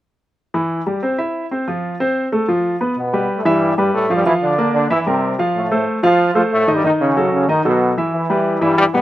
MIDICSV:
0, 0, Header, 1, 3, 480
1, 0, Start_track
1, 0, Key_signature, 0, "major"
1, 0, Tempo, 323450
1, 551, Time_signature, 4, 2, 24, 8
1, 13378, End_track
2, 0, Start_track
2, 0, Title_t, "Grand piano"
2, 0, Program_c, 0, 0
2, 803, Note_on_c, 0, 52, 75
2, 805, Note_on_c, 0, 64, 71
2, 1192, Note_off_c, 0, 52, 0
2, 1193, Note_off_c, 0, 64, 0
2, 1284, Note_on_c, 0, 55, 61
2, 1287, Note_on_c, 0, 67, 58
2, 1476, Note_off_c, 0, 55, 0
2, 1478, Note_off_c, 0, 67, 0
2, 1523, Note_on_c, 0, 60, 62
2, 1528, Note_on_c, 0, 72, 58
2, 1716, Note_off_c, 0, 60, 0
2, 1719, Note_off_c, 0, 72, 0
2, 1756, Note_on_c, 0, 64, 59
2, 1759, Note_on_c, 0, 76, 58
2, 2149, Note_off_c, 0, 64, 0
2, 2150, Note_off_c, 0, 76, 0
2, 2247, Note_on_c, 0, 60, 63
2, 2253, Note_on_c, 0, 72, 57
2, 2438, Note_off_c, 0, 60, 0
2, 2442, Note_off_c, 0, 72, 0
2, 2487, Note_on_c, 0, 53, 61
2, 2488, Note_on_c, 0, 65, 62
2, 2876, Note_off_c, 0, 53, 0
2, 2876, Note_off_c, 0, 65, 0
2, 2970, Note_on_c, 0, 60, 66
2, 2972, Note_on_c, 0, 72, 72
2, 3358, Note_off_c, 0, 60, 0
2, 3359, Note_off_c, 0, 72, 0
2, 3449, Note_on_c, 0, 57, 64
2, 3449, Note_on_c, 0, 69, 63
2, 3640, Note_off_c, 0, 57, 0
2, 3640, Note_off_c, 0, 69, 0
2, 3685, Note_on_c, 0, 53, 68
2, 3688, Note_on_c, 0, 65, 67
2, 4075, Note_off_c, 0, 53, 0
2, 4077, Note_off_c, 0, 65, 0
2, 4166, Note_on_c, 0, 59, 60
2, 4169, Note_on_c, 0, 71, 57
2, 4358, Note_off_c, 0, 59, 0
2, 4360, Note_off_c, 0, 71, 0
2, 4648, Note_on_c, 0, 55, 62
2, 4655, Note_on_c, 0, 67, 67
2, 4658, Note_on_c, 0, 71, 65
2, 5037, Note_off_c, 0, 55, 0
2, 5040, Note_off_c, 0, 67, 0
2, 5042, Note_off_c, 0, 71, 0
2, 5124, Note_on_c, 0, 52, 81
2, 5127, Note_on_c, 0, 64, 69
2, 5133, Note_on_c, 0, 76, 79
2, 5514, Note_off_c, 0, 52, 0
2, 5516, Note_off_c, 0, 64, 0
2, 5519, Note_off_c, 0, 76, 0
2, 5606, Note_on_c, 0, 55, 66
2, 5611, Note_on_c, 0, 67, 65
2, 5615, Note_on_c, 0, 71, 66
2, 5995, Note_off_c, 0, 55, 0
2, 5998, Note_off_c, 0, 67, 0
2, 6000, Note_off_c, 0, 71, 0
2, 6083, Note_on_c, 0, 53, 74
2, 6088, Note_on_c, 0, 65, 68
2, 6093, Note_on_c, 0, 77, 63
2, 6276, Note_off_c, 0, 53, 0
2, 6279, Note_off_c, 0, 65, 0
2, 6282, Note_off_c, 0, 77, 0
2, 6319, Note_on_c, 0, 53, 69
2, 6323, Note_on_c, 0, 65, 69
2, 6329, Note_on_c, 0, 77, 69
2, 6710, Note_off_c, 0, 53, 0
2, 6713, Note_off_c, 0, 65, 0
2, 6716, Note_off_c, 0, 77, 0
2, 6799, Note_on_c, 0, 58, 71
2, 6804, Note_on_c, 0, 70, 65
2, 6808, Note_on_c, 0, 74, 73
2, 7190, Note_off_c, 0, 58, 0
2, 7193, Note_off_c, 0, 70, 0
2, 7196, Note_off_c, 0, 74, 0
2, 7275, Note_on_c, 0, 52, 77
2, 7276, Note_on_c, 0, 64, 75
2, 7281, Note_on_c, 0, 76, 75
2, 7471, Note_off_c, 0, 52, 0
2, 7472, Note_off_c, 0, 64, 0
2, 7475, Note_off_c, 0, 76, 0
2, 7517, Note_on_c, 0, 55, 66
2, 7523, Note_on_c, 0, 67, 64
2, 7526, Note_on_c, 0, 70, 64
2, 7909, Note_off_c, 0, 55, 0
2, 7912, Note_off_c, 0, 67, 0
2, 7914, Note_off_c, 0, 70, 0
2, 7996, Note_on_c, 0, 53, 66
2, 8002, Note_on_c, 0, 65, 72
2, 8006, Note_on_c, 0, 77, 67
2, 8388, Note_off_c, 0, 53, 0
2, 8392, Note_off_c, 0, 65, 0
2, 8394, Note_off_c, 0, 77, 0
2, 8476, Note_on_c, 0, 57, 68
2, 8484, Note_on_c, 0, 69, 70
2, 8487, Note_on_c, 0, 72, 64
2, 8867, Note_off_c, 0, 57, 0
2, 8872, Note_off_c, 0, 69, 0
2, 8874, Note_off_c, 0, 72, 0
2, 8948, Note_on_c, 0, 53, 80
2, 8955, Note_on_c, 0, 65, 76
2, 8956, Note_on_c, 0, 77, 83
2, 9343, Note_off_c, 0, 53, 0
2, 9347, Note_off_c, 0, 65, 0
2, 9347, Note_off_c, 0, 77, 0
2, 9423, Note_on_c, 0, 57, 63
2, 9425, Note_on_c, 0, 69, 66
2, 9433, Note_on_c, 0, 72, 67
2, 9819, Note_off_c, 0, 57, 0
2, 9821, Note_off_c, 0, 69, 0
2, 9826, Note_off_c, 0, 72, 0
2, 9909, Note_on_c, 0, 51, 68
2, 9912, Note_on_c, 0, 63, 74
2, 9914, Note_on_c, 0, 75, 73
2, 10106, Note_off_c, 0, 51, 0
2, 10108, Note_off_c, 0, 63, 0
2, 10109, Note_off_c, 0, 75, 0
2, 10153, Note_on_c, 0, 51, 70
2, 10157, Note_on_c, 0, 63, 73
2, 10161, Note_on_c, 0, 75, 67
2, 10545, Note_off_c, 0, 51, 0
2, 10547, Note_off_c, 0, 63, 0
2, 10550, Note_off_c, 0, 75, 0
2, 10627, Note_on_c, 0, 54, 65
2, 10630, Note_on_c, 0, 66, 68
2, 10640, Note_on_c, 0, 69, 67
2, 11021, Note_off_c, 0, 54, 0
2, 11023, Note_off_c, 0, 66, 0
2, 11029, Note_off_c, 0, 69, 0
2, 11109, Note_on_c, 0, 51, 69
2, 11114, Note_on_c, 0, 63, 72
2, 11119, Note_on_c, 0, 75, 79
2, 11306, Note_off_c, 0, 51, 0
2, 11309, Note_off_c, 0, 63, 0
2, 11312, Note_off_c, 0, 75, 0
2, 11348, Note_on_c, 0, 54, 59
2, 11355, Note_on_c, 0, 66, 68
2, 11357, Note_on_c, 0, 69, 60
2, 11742, Note_off_c, 0, 54, 0
2, 11746, Note_off_c, 0, 66, 0
2, 11747, Note_off_c, 0, 69, 0
2, 11835, Note_on_c, 0, 52, 71
2, 11841, Note_on_c, 0, 64, 61
2, 11845, Note_on_c, 0, 76, 66
2, 12225, Note_off_c, 0, 52, 0
2, 12229, Note_off_c, 0, 64, 0
2, 12231, Note_off_c, 0, 76, 0
2, 12313, Note_on_c, 0, 55, 71
2, 12317, Note_on_c, 0, 67, 66
2, 12324, Note_on_c, 0, 71, 62
2, 12704, Note_off_c, 0, 55, 0
2, 12707, Note_off_c, 0, 67, 0
2, 12711, Note_off_c, 0, 71, 0
2, 12782, Note_on_c, 0, 52, 76
2, 12790, Note_on_c, 0, 64, 74
2, 12792, Note_on_c, 0, 76, 74
2, 13178, Note_off_c, 0, 52, 0
2, 13182, Note_off_c, 0, 64, 0
2, 13183, Note_off_c, 0, 76, 0
2, 13272, Note_on_c, 0, 55, 62
2, 13279, Note_on_c, 0, 67, 62
2, 13282, Note_on_c, 0, 71, 62
2, 13378, Note_off_c, 0, 55, 0
2, 13378, Note_off_c, 0, 67, 0
2, 13378, Note_off_c, 0, 71, 0
2, 13378, End_track
3, 0, Start_track
3, 0, Title_t, "Trombone section"
3, 0, Program_c, 1, 61
3, 4411, Note_on_c, 1, 47, 62
3, 4416, Note_on_c, 1, 59, 53
3, 4850, Note_off_c, 1, 47, 0
3, 4853, Note_off_c, 1, 59, 0
3, 5007, Note_on_c, 1, 57, 57
3, 5113, Note_off_c, 1, 57, 0
3, 5127, Note_on_c, 1, 55, 92
3, 5136, Note_on_c, 1, 43, 66
3, 5576, Note_off_c, 1, 55, 0
3, 5584, Note_off_c, 1, 43, 0
3, 5594, Note_on_c, 1, 55, 69
3, 5602, Note_on_c, 1, 43, 54
3, 5817, Note_off_c, 1, 55, 0
3, 5822, Note_off_c, 1, 43, 0
3, 5840, Note_on_c, 1, 57, 82
3, 5855, Note_on_c, 1, 45, 60
3, 6135, Note_off_c, 1, 57, 0
3, 6143, Note_off_c, 1, 45, 0
3, 6163, Note_on_c, 1, 55, 76
3, 6170, Note_on_c, 1, 43, 65
3, 6308, Note_off_c, 1, 55, 0
3, 6312, Note_off_c, 1, 43, 0
3, 6317, Note_on_c, 1, 52, 78
3, 6325, Note_on_c, 1, 64, 62
3, 6425, Note_off_c, 1, 52, 0
3, 6431, Note_off_c, 1, 64, 0
3, 6555, Note_on_c, 1, 50, 79
3, 6571, Note_on_c, 1, 62, 64
3, 7001, Note_off_c, 1, 50, 0
3, 7009, Note_off_c, 1, 62, 0
3, 7042, Note_on_c, 1, 50, 85
3, 7054, Note_on_c, 1, 62, 64
3, 7261, Note_off_c, 1, 50, 0
3, 7268, Note_off_c, 1, 62, 0
3, 7288, Note_on_c, 1, 52, 79
3, 7299, Note_on_c, 1, 64, 69
3, 7393, Note_off_c, 1, 52, 0
3, 7401, Note_off_c, 1, 64, 0
3, 7530, Note_on_c, 1, 48, 75
3, 7538, Note_on_c, 1, 60, 60
3, 7968, Note_off_c, 1, 48, 0
3, 7972, Note_off_c, 1, 60, 0
3, 8238, Note_on_c, 1, 45, 66
3, 8251, Note_on_c, 1, 57, 57
3, 8681, Note_off_c, 1, 45, 0
3, 8688, Note_off_c, 1, 57, 0
3, 8957, Note_on_c, 1, 53, 90
3, 8962, Note_on_c, 1, 65, 72
3, 9400, Note_off_c, 1, 53, 0
3, 9403, Note_off_c, 1, 65, 0
3, 9430, Note_on_c, 1, 53, 73
3, 9436, Note_on_c, 1, 65, 61
3, 9538, Note_off_c, 1, 53, 0
3, 9543, Note_off_c, 1, 65, 0
3, 9680, Note_on_c, 1, 57, 91
3, 9689, Note_on_c, 1, 45, 65
3, 9973, Note_off_c, 1, 57, 0
3, 9978, Note_off_c, 1, 45, 0
3, 10005, Note_on_c, 1, 55, 89
3, 10022, Note_on_c, 1, 43, 66
3, 10158, Note_off_c, 1, 55, 0
3, 10163, Note_on_c, 1, 51, 73
3, 10166, Note_off_c, 1, 43, 0
3, 10170, Note_on_c, 1, 63, 68
3, 10268, Note_off_c, 1, 51, 0
3, 10274, Note_off_c, 1, 63, 0
3, 10392, Note_on_c, 1, 49, 76
3, 10399, Note_on_c, 1, 61, 59
3, 10837, Note_off_c, 1, 49, 0
3, 10841, Note_off_c, 1, 61, 0
3, 10869, Note_on_c, 1, 49, 84
3, 10878, Note_on_c, 1, 61, 65
3, 11092, Note_off_c, 1, 49, 0
3, 11097, Note_off_c, 1, 61, 0
3, 11101, Note_on_c, 1, 51, 92
3, 11113, Note_on_c, 1, 63, 72
3, 11341, Note_on_c, 1, 47, 81
3, 11345, Note_off_c, 1, 51, 0
3, 11349, Note_on_c, 1, 59, 62
3, 11351, Note_off_c, 1, 63, 0
3, 11791, Note_off_c, 1, 47, 0
3, 11795, Note_off_c, 1, 59, 0
3, 12063, Note_on_c, 1, 52, 80
3, 12072, Note_on_c, 1, 64, 70
3, 12735, Note_off_c, 1, 52, 0
3, 12739, Note_off_c, 1, 64, 0
3, 12788, Note_on_c, 1, 55, 91
3, 12793, Note_on_c, 1, 43, 72
3, 13006, Note_off_c, 1, 55, 0
3, 13016, Note_off_c, 1, 43, 0
3, 13024, Note_on_c, 1, 55, 98
3, 13034, Note_on_c, 1, 43, 76
3, 13133, Note_off_c, 1, 55, 0
3, 13140, Note_off_c, 1, 43, 0
3, 13264, Note_on_c, 1, 47, 72
3, 13264, Note_on_c, 1, 59, 84
3, 13378, Note_off_c, 1, 47, 0
3, 13378, Note_off_c, 1, 59, 0
3, 13378, End_track
0, 0, End_of_file